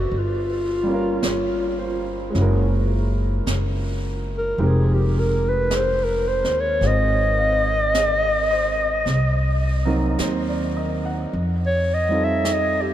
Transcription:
Already playing: grand piano C4 D4 E4 B4, clarinet F#4
0.11 upright bass G1, brush sweep
0.18 clarinet F4
0.83 grand piano G3 A#3
0.88 grand piano C#4 F4
0.94 grand piano A#4
1.23 upright bass G1, grand piano C#5, brush sweep, snare, hi-hat pedal
1.79 grand piano C5
2.30 grand piano G#3 C#4
2.35 upright bass F#1, grand piano E4 F#4, brush sweep, snare
2.41 grand piano A#4
3.46 upright bass F#1, brush sweep, snare, hi-hat pedal
4.38 clarinet A#4
4.58 upright bass F1, grand piano G#3 C4 D#4 G4 A#4, brush sweep
4.67 clarinet G#4
4.94 clarinet G4
5.19 clarinet A#4
5.49 clarinet B4
5.71 brush sweep, snare, hi-hat pedal
5.76 clarinet C5
6.04 clarinet A#4
6.28 clarinet C5
6.44 upright bass D#2, snare
6.60 clarinet C#5
6.81 upright bass G#1, grand piano C4 F4 G#4, brush sweep, snare
6.87 clarinet D#5
7.38 grand piano F5
7.94 grand piano D#5, brush sweep, snare, hi-hat pedal
8.51 grand piano C5
9.06 upright bass C2, brush sweep, snare
9.85 grand piano F#3 A#3 C4 D#4 A#4
10.19 upright bass D#2, grand piano C5, brush sweep, snare, hi-hat pedal
10.49 grand piano D5
10.77 grand piano D#5
11.05 grand piano F#5
11.32 upright bass F2, brush sweep
11.66 clarinet C#5
11.94 clarinet D#5
12.09 grand piano G3 C4 D#4 F4
12.14 grand piano A4
12.25 clarinet E5
12.45 brush sweep, snare, hi-hat pedal
12.54 clarinet D#5
12.82 clarinet G4

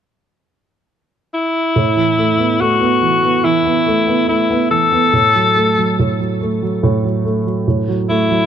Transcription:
1.34 alto saxophone E4
1.76 grand piano A2
1.96 grand piano E3
2.18 grand piano A3
2.38 grand piano B3
2.60 grand piano A3, alto saxophone F#4
2.80 grand piano B3
3.02 grand piano E3
3.23 grand piano B3
3.44 grand piano E3, alto saxophone E4
3.65 grand piano B3
3.87 grand piano A3
4.07 grand piano B3
4.29 grand piano A3, alto saxophone E4
4.50 grand piano B3
4.71 grand piano E3, alto saxophone A4
4.92 grand piano B3
5.13 grand piano A2
5.35 grand piano F#3
5.56 grand piano A3
5.78 grand piano F#3
5.99 grand piano A2
6.20 grand piano F#3
6.41 grand piano A3
6.63 grand piano F#3
6.83 grand piano A2
7.04 grand piano F#3
7.25 grand piano A3
7.46 grand piano F#3
7.68 grand piano A2
7.88 grand piano F#3
8.09 grand piano A3, alto saxophone E4
8.30 grand piano F#3

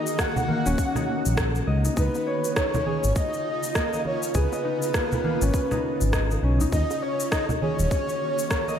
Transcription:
Already playing: ambient pad D#3 A#3 F#4, harp A#3 D#4 G#4 D#5, soft synth lead D#5
0.07 shaker
0.18 harp A#3, soft synth lead F#5, kick, cross-stick, shaker
0.36 low conga, shaker
0.48 harp A#3, high bongo, high conga
0.66 analog synth bass D#1, harp C#4, shaker
0.78 kick, shaker
0.95 harp D#4, cross-stick, low conga, shaker
1.26 analog synth bass A#1, shaker
1.37 kick, cross-stick, shaker
1.55 high conga, shaker
1.67 analog synth bass C#2, harp D#5
1.85 harp D#4, shaker
1.97 analog synth bass C#2, ambient pad C#3 F4, harp D#4, soft synth lead B4, kick, shaker
2.15 high bongo, shaker
2.27 harp C#5
2.45 shaker
2.56 harp D#4, soft synth lead C#5, kick, cross-stick, shaker
2.74 low conga, shaker
2.86 harp G#4, high conga
3.04 analog synth bass G#1, shaker
3.16 soft synth lead D#5, kick, shaker
3.34 shaker
3.63 shaker
3.75 harp A#3, kick, cross-stick, shaker
3.93 harp D#5, high conga, shaker
4.05 soft synth lead C#5, high bongo, high conga
4.23 shaker
4.35 analog synth bass C#2, harp G#4, soft synth lead B4, kick, shaker
4.52 harp D#5, high bongo, shaker
4.64 harp D#4
4.82 shaker
4.94 harp A#3, kick, cross-stick, shaker
5.12 low conga, shaker
5.24 harp A#3, high bongo, high conga
5.42 analog synth bass G#1, harp C#4, shaker
5.54 kick, shaker
5.71 harp D#4, cross-stick, low conga, shaker
6.01 analog synth bass G#1, shaker
6.13 harp D#5, kick, cross-stick, shaker
6.31 harp D#4, high conga, shaker
6.43 analog synth bass B1, harp C#4
6.61 harp D#4, low conga, shaker
6.72 analog synth bass D#2, ambient pad D#3 A#3 F#4, harp D#4, soft synth lead D#5, kick, shaker
6.90 high bongo, shaker
7.02 soft synth lead C#5, harp C#5
7.20 shaker
7.31 harp D#4, soft synth lead D#5, kick, cross-stick, shaker
7.49 low conga, shaker
7.61 harp G#4, soft synth lead C#5, high conga
7.79 analog synth bass D#1, shaker
7.91 kick, shaker
8.09 shaker
8.39 shaker
8.51 harp A#3, kick, cross-stick, shaker
8.68 harp D#5, high conga, shaker

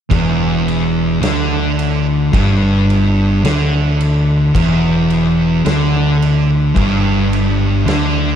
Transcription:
0.11 picked electric bass E1, distorted electric guitar E2, kick, crash
0.68 crash
1.20 picked electric bass D2, distorted electric guitar D3, snare, crash
1.79 crash
2.33 picked electric bass G1, distorted electric guitar G2, kick, crash
2.90 crash
3.43 picked electric bass D2, distorted electric guitar D3, snare, crash
4.01 crash
4.55 picked electric bass E1, distorted electric guitar E2, kick, crash
5.10 crash
5.65 picked electric bass D2, distorted electric guitar D3, snare, crash
6.22 crash
6.75 picked electric bass G1, distorted electric guitar G2, kick, crash
7.33 crash
7.86 picked electric bass D2, distorted electric guitar D3, snare, crash

